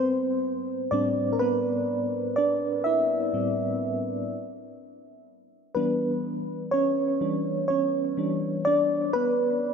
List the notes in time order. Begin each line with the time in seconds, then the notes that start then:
Already playing: B3 C4 B4 C5
0.91 A2 G3 C4 D4 D5
1.33 A#4
1.39 B3 B4
2.36 D4 D5
2.84 E4 E5
3.33 A2 G3 C4
5.75 E3 G3 B3 D4 B4
6.71 C#4 C#5
7.21 E3 G3 D4
7.68 C#4 C#5
8.17 E3 G3 D4
8.65 D4 D5
9.13 B3 B4